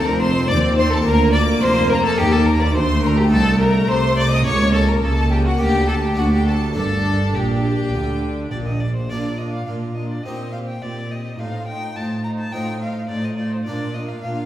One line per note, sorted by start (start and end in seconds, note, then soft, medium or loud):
0.00 0.48 F1 loud
0.00 0.45 F2 medium
0.00 0.48 F2 loud
0.00 0.45 A3 medium
0.00 1.03 C4 loud
0.00 1.01 F4 medium
0.06 0.21 A#4 medium
0.06 0.22 A#4 loud
0.06 0.21 A#5 loud
0.20 0.49 C5 loud
0.20 0.48 C5 loud
0.20 0.48 C6 loud
0.48 1.01 D#2 medium
0.48 1.06 D#2 medium
0.48 0.75 D5 loud
0.48 0.77 D5 loud
0.48 0.57 D6 loud
0.76 0.92 C5 loud
0.76 0.83 C5 medium
0.76 0.92 C6 loud
0.90 1.04 A4 loud
0.90 0.97 A4 medium
0.90 1.06 A5 loud
1.01 2.13 A#3 medium
1.01 2.14 F4 medium
1.01 1.32 A#4 loud
1.05 1.58 D2 medium
1.05 1.61 D2 medium
1.05 2.76 A#3 loud
1.05 1.33 A#4 loud
1.05 1.34 A#5 loud
1.33 1.41 D5 loud
1.33 1.62 D5 loud
1.33 1.62 D6 loud
1.61 2.18 F1 loud
1.61 2.18 F2 loud
1.61 2.15 F2 medium
1.61 1.91 C5 loud
1.61 1.90 C5 loud
1.61 1.90 C6 loud
1.90 2.03 A#4 loud
1.90 2.05 A#4 loud
1.90 2.04 A#5 loud
2.04 2.20 A4 loud
2.04 2.19 A4 loud
2.04 2.11 A5 loud
2.14 2.72 A#3 medium
2.14 3.27 D#4 medium
2.14 3.28 G4 medium
2.18 2.72 D#2 medium
2.18 2.76 D#2 loud
2.18 2.33 G4 loud
2.18 2.34 G4 loud
2.18 2.33 G5 loud
2.32 2.47 A4 loud
2.32 2.47 A4 medium
2.32 2.48 A5 loud
2.46 2.61 A#4 loud
2.46 2.62 A#5 loud
2.60 2.75 D5 loud
2.60 2.76 D5 loud
2.60 2.77 D6 medium
2.75 3.32 D2 loud
2.75 3.28 D2 medium
2.75 4.46 A3 medium
2.75 3.02 C5 loud
2.75 3.03 C5 medium
2.75 3.04 C6 loud
3.03 3.19 A#4 medium
3.03 3.18 A#4 loud
3.03 3.19 A#5 loud
3.17 3.32 G4 medium
3.17 3.30 G4 medium
3.17 3.33 G5 loud
3.28 4.40 A3 medium
3.28 4.41 D#4 medium
3.28 3.60 A4 loud
3.28 3.40 A4 loud
3.32 3.88 C2 medium
3.32 3.89 C2 medium
3.32 3.85 C2 medium
3.32 3.60 A5 loud
3.60 3.90 A#4 medium
3.60 3.69 A#4 medium
3.60 3.89 A#5 loud
3.88 4.45 C2 medium
3.88 4.42 C3 medium
3.88 4.45 C3 loud
3.88 4.17 C5 loud
3.88 4.18 C6 loud
4.18 4.30 D5 loud
4.18 4.32 D5 loud
4.18 4.33 D6 loud
4.31 4.45 D#5 loud
4.31 4.38 D#5 medium
4.31 4.40 D#6 loud
4.42 5.55 A#3 medium
4.42 5.55 E4 medium
4.42 5.56 G4 medium
4.42 4.74 C#5 loud
4.46 4.99 C#2 medium
4.46 5.02 C#2 loud
4.46 5.03 C#2 medium
4.46 5.02 A#3 medium
4.46 4.75 C#5 loud
4.46 4.75 C#6 loud
4.75 4.90 A4 medium
4.75 4.89 A4 loud
4.75 4.89 A5 medium
4.89 5.05 A#4 medium
4.89 5.04 A#4 medium
4.89 5.04 A#5 medium
5.03 5.59 C#2 medium
5.03 5.56 C#3 medium
5.03 5.60 C#3 medium
5.03 6.16 A#3 medium
5.03 5.32 A4 medium
5.03 5.31 A4 medium
5.03 5.31 A5 loud
5.32 5.37 G4 medium
5.32 5.46 G4 medium
5.32 5.46 G5 loud
5.45 5.51 F#4 medium
5.45 5.60 F#4 medium
5.45 5.60 F#5 medium
5.56 6.14 A#3 medium
5.56 6.14 D4 medium
5.56 6.16 G4 medium
5.56 5.88 G4 loud
5.56 5.88 G4 medium
5.60 6.14 D2 medium
5.60 6.17 D2 medium
5.60 5.89 G5 loud
5.88 5.94 A4 medium
5.88 5.95 A4 medium
5.88 6.04 A5 loud
6.03 6.17 G4 medium
6.03 6.20 G4 medium
6.03 6.19 G5 medium
6.14 6.72 A3 medium
6.14 6.72 D4 medium
6.14 6.74 F#4 medium
6.14 6.32 F#4 medium
6.18 6.75 D2 medium
6.18 6.72 D2 medium
6.18 6.75 D2 medium
6.18 6.75 D4 medium
6.18 6.32 F#4 medium
6.18 6.24 F#5 loud
6.33 6.47 G4 medium
6.33 6.46 G4 medium
6.33 6.47 G5 medium
6.46 6.74 A4 medium
6.46 6.55 A4 medium
6.46 6.76 A5 loud
6.72 9.04 A#3 medium
6.72 9.05 D4 medium
6.72 9.06 G4 medium
6.72 7.33 A4 medium
6.76 7.35 G1 medium
6.76 7.31 G2 medium
6.76 7.35 G2 medium
6.76 8.86 D4 medium
6.76 7.36 A4 loud
6.76 7.34 A5 loud
7.34 7.92 A#1 medium
7.34 7.89 A#2 medium
7.34 7.92 A#2 medium
7.34 8.81 G4 medium
7.34 8.50 G4 medium
7.34 8.82 G5 medium
7.93 8.51 D2 medium
7.93 8.48 D3 medium
7.93 8.51 D3 medium
8.51 9.09 A#1 medium
8.51 9.06 A#2 medium
8.51 9.09 A#2 medium
8.51 8.57 D5 medium
8.67 8.82 D#5 medium
8.80 8.95 D5 medium
8.96 9.11 C5 medium
9.09 9.61 A#2 medium
9.09 9.58 A#2 soft
9.09 10.21 A#3 soft
9.09 9.39 D4 soft
9.09 10.22 D4 soft
9.09 9.38 F4 soft
9.09 10.22 F4 soft
9.09 9.38 A#4 soft
9.09 9.40 D5 medium
9.38 9.67 D4 soft
9.38 9.66 F4 soft
9.38 9.67 A#4 soft
9.38 9.53 D#5 medium
9.54 9.66 F5 medium
9.67 10.18 A#2 medium
9.67 10.16 A#2 soft
9.67 9.95 D4 soft
9.67 9.95 F4 soft
9.67 9.96 A#4 soft
9.67 9.75 F5 medium
9.95 10.25 D4 soft
9.95 10.25 F4 soft
9.95 10.25 A#4 soft
9.95 10.10 D#5 medium
10.10 10.25 D5 medium
10.23 10.75 A#2 medium
10.23 10.73 A#2 soft
10.23 10.53 C4 medium
10.23 11.36 C4 soft
10.23 11.36 D#4 soft
10.23 10.52 G4 soft
10.23 10.53 C5 soft
10.23 10.52 D#5 medium
10.52 10.81 C4 soft
10.52 10.80 G4 soft
10.52 10.81 C5 soft
10.52 10.58 F5 medium
10.68 10.83 G5 medium
10.82 11.30 A#2 soft
10.82 11.33 A#2 medium
10.82 11.10 C4 soft
10.82 11.10 G4 soft
10.82 11.09 C5 soft
10.82 11.13 D5 medium
11.11 11.39 C4 soft
11.11 11.39 G4 soft
11.11 11.38 C5 soft
11.11 11.41 D#5 medium
11.39 11.86 A2 soft
11.39 11.90 A2 medium
11.39 11.67 D#4 soft
11.39 11.66 F4 soft
11.39 11.67 C5 soft
11.39 11.67 F5 medium
11.67 11.95 D#4 soft
11.67 11.95 F4 soft
11.67 11.96 C5 soft
11.67 11.98 G5 medium
11.96 12.43 A2 soft
11.96 12.46 A2 medium
11.96 12.23 D#4 soft
11.96 12.23 F4 soft
11.96 12.24 C5 soft
11.96 12.24 A5 medium
12.24 12.51 D#4 soft
12.24 12.52 F4 soft
12.24 12.52 C5 soft
12.24 12.30 A#5 medium
12.39 12.54 A5 medium
12.52 13.00 A2 soft
12.52 13.03 A2 medium
12.52 13.35 C4 soft
12.52 12.79 D#4 medium
12.52 13.35 D#4 soft
12.52 12.79 F4 medium
12.52 12.80 C5 soft
12.52 12.81 G5 medium
12.80 13.08 D#4 soft
12.80 13.09 F4 soft
12.80 13.09 C5 soft
12.80 13.09 F5 medium
13.09 13.57 A2 soft
13.09 13.60 A2 medium
13.09 13.37 D#4 soft
13.09 13.37 F4 soft
13.09 13.37 C5 soft
13.09 13.26 D5 medium
13.25 13.37 D#5 medium
13.38 13.66 D#4 soft
13.38 13.65 F4 soft
13.38 13.66 C5 soft
13.38 13.54 D5 medium
13.53 13.65 C5 medium
13.65 14.14 A#2 soft
13.65 14.17 A#2 medium
13.65 14.46 A#3 soft
13.65 13.94 D4 soft
13.65 14.46 D4 soft
13.65 13.93 F4 soft
13.65 13.94 A#4 soft
13.65 13.96 D5 medium
13.94 14.22 D4 soft
13.94 14.23 F4 soft
13.94 14.23 A#4 soft
13.94 14.10 D#5 medium
14.08 14.21 F5 medium
14.22 14.46 A#2 soft
14.22 14.46 A#2 medium
14.22 14.46 D4 soft
14.22 14.46 F4 soft
14.22 14.46 A#4 soft
14.22 14.46 F5 medium